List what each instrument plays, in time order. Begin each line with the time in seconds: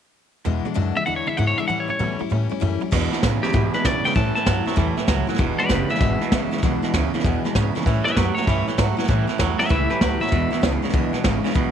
0.45 steel-string acoustic guitar E2 B2 E3 G#3 D4 E4, clean electric guitar E2 B2, upright bass E2
0.65 clean electric guitar E2 B2, steel-string acoustic guitar E3 G#3 D4 E4
0.74 steel-string acoustic guitar E2 B2 E3 G#3 D4 E4, clean electric guitar E2 C#3, upright bass F#2
0.96 clean electric guitar E2 C#3 E5, steel-string acoustic guitar E3 G#3 D4 E4
1.06 clean electric guitar E2 D3 F#5, upright bass E2, steel-string acoustic guitar E3 G#3 D4 E4
1.16 clean electric guitar C#5
1.27 clean electric guitar E2 D3 E5, steel-string acoustic guitar E3 G#3 D4 E4, muted upright bass stroke
1.37 steel-string acoustic guitar E2 B2 E3 G#3 D4 E4, clean electric guitar E2 C#3 F#5, upright bass G#2
1.47 clean electric guitar C#5
1.58 clean electric guitar E2 C#3 E5, steel-string acoustic guitar E3 G#3 D4 E4, muted upright bass stroke
1.68 steel-string acoustic guitar A2 E3 G3 C#4 E4, upright bass A2, clean electric guitar A2 E3 F#5
1.80 clean electric guitar C#5
1.88 clean electric guitar A2 E3 C#5, steel-string acoustic guitar G3 C#4 E4, muted upright bass stroke
1.99 steel-string acoustic guitar A2 E3 G3 C#4 E4, clean electric guitar A2 F#3, upright bass B2
2.19 clean electric guitar A2 F#3, steel-string acoustic guitar G3 C#4 E4, muted upright bass stroke
2.30 upright bass A2, clean electric guitar A2 G3, steel-string acoustic guitar E3 G3 C#4 E4
2.49 clean electric guitar A2 G3, steel-string acoustic guitar G3 C#4 E4, muted upright bass stroke
2.60 upright bass F#2, steel-string acoustic guitar A2 E3 G3 C#4 E4, clean electric guitar A2 F#3
2.80 clean electric guitar A2 F#3, steel-string acoustic guitar G3 C#4 E4, muted upright bass stroke
2.91 steel-string acoustic guitar E2 B2 E3 G#3 D4 E4, clean electric guitar E2 B2, upright bass E2, kick, snare, crash
3.12 clean electric guitar E2 B2, steel-string acoustic guitar E3 G#3 D4 E4, snare
3.23 clean electric guitar E2 C#3, upright bass A2, steel-string acoustic guitar E3 G#3 D4 E4, kick, snare, hi-hat pedal
3.43 clean electric guitar E2 C#3 G4, steel-string acoustic guitar E3 G#3 D4 E4, muted upright bass stroke, snare
3.48 snare
3.53 steel-string acoustic guitar E2 B2 E3 G#3 D4 E4, clean electric guitar E2 B2, upright bass G#2, kick, snare
3.74 clean electric guitar E2 B2 B4, steel-string acoustic guitar E3 G#3 D4 E4, snare
3.84 clean electric guitar E2 C#3 D5, upright bass B2, steel-string acoustic guitar E3 G#3 D4 E4, kick, snare, hi-hat pedal
4.04 clean electric guitar E2 C#3 G5, steel-string acoustic guitar E3 G#3 D4 E4, muted upright bass stroke, snare
4.10 snare
4.15 steel-string acoustic guitar A2 E3 G3 C#4 E4, clean electric guitar A2 E3 A5, upright bass A2, kick, snare
4.35 clean electric guitar A2 E3 A5, steel-string acoustic guitar G3 C#4 E4, muted upright bass stroke, snare
4.46 upright bass G2, clean electric guitar A2 F#3, steel-string acoustic guitar E3 G3 C#4 E4, kick, snare, hi-hat pedal
4.66 clean electric guitar A2 F#3, steel-string acoustic guitar G3 C#4 E4, muted upright bass stroke, snare
4.72 steel-string acoustic guitar A2 E3 G3 C#4, snare
4.77 upright bass E2, clean electric guitar A2 E3, steel-string acoustic guitar E4, kick, snare
4.97 clean electric guitar A2 E3, steel-string acoustic guitar G3 C#4 E4, muted upright bass stroke, snare
5.07 upright bass C#2, clean electric guitar A2 F#3, steel-string acoustic guitar E3 G3 C#4 E4, kick, snare, hi-hat pedal
5.27 clean electric guitar A2 F#3, steel-string acoustic guitar G3 C#4 E4, muted upright bass stroke, snare
5.34 steel-string acoustic guitar E2, snare
5.38 upright bass E1, clean electric guitar E2 B2, steel-string acoustic guitar B2 E3 G#3 D4 E4, kick, snare
5.58 clean electric guitar E2 B2 B4 D5, steel-string acoustic guitar E3 G#3 D4 E4, muted upright bass stroke, snare
5.69 upright bass F#1, clean electric guitar E2 C#3 G4 B4, steel-string acoustic guitar E3 G#3 D4 E4, kick, snare, hi-hat pedal
5.90 clean electric guitar E2 C#3 E5, steel-string acoustic guitar E3 G#3 D4 E4, snare
5.95 snare
6.00 upright bass G#1, steel-string acoustic guitar E2 B2 E3 G#3 D4 E4, clean electric guitar E2 B2, kick, snare
6.21 clean electric guitar E2 B2, steel-string acoustic guitar E3 G#3 D4 E4, muted upright bass stroke, snare
6.32 upright bass A1, clean electric guitar E2 C#3, steel-string acoustic guitar E3 G#3 D4 E4, kick, snare, hi-hat pedal
6.51 clean electric guitar E2 C#3, steel-string acoustic guitar E3 G#3 D4 E4, snare
6.58 snare
6.63 upright bass B1, steel-string acoustic guitar E2 B2 E3 G#3 D4 E4, clean electric guitar E2 B2, kick, snare
6.82 clean electric guitar E2 B2, steel-string acoustic guitar E3 G#3 D4 E4, snare
6.93 upright bass D2, clean electric guitar E2 C#3, steel-string acoustic guitar E3 G#3 D4 E4, kick, snare, hi-hat pedal
7.14 clean electric guitar E2 C#3, steel-string acoustic guitar E3 G#3 D4 E4, snare
7.20 snare
7.24 upright bass E2, steel-string acoustic guitar E2 B2 E3 G#3 D4 E4, clean electric guitar E2 B2, kick, snare
7.44 clean electric guitar E2 B2, steel-string acoustic guitar E3 G#3 D4 E4, muted upright bass stroke, snare
7.55 clean electric guitar E2 C#3, upright bass G#2, steel-string acoustic guitar E3 G#3 D4 E4, kick, snare, hi-hat pedal
7.75 clean electric guitar E2 C#3, steel-string acoustic guitar E3 G#3 D4 E4, muted upright bass stroke, snare
7.81 snare
7.86 upright bass A2, clean electric guitar A2 E3, steel-string acoustic guitar A2 E3 G3 C#4 E4, kick, snare
8.04 clean electric guitar A2 E3 B4 E5, steel-string acoustic guitar G3 C#4 E4, snare
8.15 upright bass F#2, clean electric guitar A2 F#3 G4 B4, steel-string acoustic guitar E3 G3 E4, kick, snare, hi-hat pedal
8.35 clean electric guitar A2 F#3 C#5, steel-string acoustic guitar C#4 E4, snare
8.39 steel-string acoustic guitar G3, snare
8.47 upright bass G2, clean electric guitar A2 E3, steel-string acoustic guitar A2 E3 G3 C#4 E4, kick, snare
8.67 clean electric guitar A2 E3, steel-string acoustic guitar G3 C#4 E4, muted upright bass stroke, snare
8.77 upright bass G#2, clean electric guitar A2 F#3, steel-string acoustic guitar E3 G3 C#4 E4, kick, snare, hi-hat pedal
8.97 clean electric guitar A2 F#3, steel-string acoustic guitar G3 C#4 E4, snare
9.04 snare
9.08 steel-string acoustic guitar A2 E3 G3 C#4 E4, clean electric guitar A2 E3, upright bass A2, kick, snare
9.27 clean electric guitar A2 E3, steel-string acoustic guitar G3 C#4 E4, muted upright bass stroke, snare
9.38 upright bass E2, clean electric guitar A2 F#3, steel-string acoustic guitar E3 G3 C#4 E4, kick, snare, hi-hat pedal
9.59 clean electric guitar A2 F#3 B4 E5, steel-string acoustic guitar G3 C#4 E4, muted upright bass stroke, snare
9.65 snare
9.69 upright bass C#2, steel-string acoustic guitar A2 E3 G3 C#4 E4, clean electric guitar A2 E3 B4 E5, kick, snare
9.90 clean electric guitar A2 E3 G4 B4, steel-string acoustic guitar G3 C#4 E4, snare
10.01 upright bass D2, clean electric guitar A2 F#3 G4 B4, steel-string acoustic guitar E3 G3 C#4 E4, kick, snare, hi-hat pedal
10.21 clean electric guitar A2 F#3 E5, steel-string acoustic guitar G3 C#4 E4, muted upright bass stroke, snare
10.27 snare
10.32 clean electric guitar E2 B2, steel-string acoustic guitar E2 B2 E3 G#3 D4 E4, upright bass E2, kick, snare
10.50 clean electric guitar E2 B2, steel-string acoustic guitar E3 G#3 D4 E4, muted upright bass stroke, snare
10.61 upright bass C#2, clean electric guitar E2 C#3, steel-string acoustic guitar E3 G#3 D4 E4, kick, snare, hi-hat pedal
10.82 clean electric guitar E2 C#3, steel-string acoustic guitar E3 G#3 D4 E4, snare
10.89 snare
10.93 upright bass B1, steel-string acoustic guitar E2 B2 E3 G#3 D4 E4, clean electric guitar E2 B2, kick, snare
11.13 clean electric guitar E2 B2, steel-string acoustic guitar E3 G#3 D4 E4, muted upright bass stroke, snare
11.24 upright bass G#1, clean electric guitar E2 C#3, steel-string acoustic guitar E3 G#3 D4 E4, kick, snare, hi-hat pedal
11.44 clean electric guitar E2 C#3, steel-string acoustic guitar E3 G#3 D4 E4, muted upright bass stroke, snare
11.50 snare
11.54 upright bass B1, steel-string acoustic guitar E2 B2 E3 G#3 D4 E4, clean electric guitar E2 B2, kick, snare